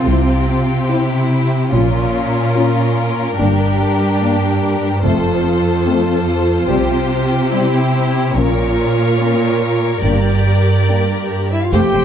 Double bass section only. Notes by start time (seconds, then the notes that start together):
0.06 C2
1.73 A#1
3.39 G1
5.05 F1
6.69 C2
8.37 A#1
10.04 G1
11.73 F1
11.94 F1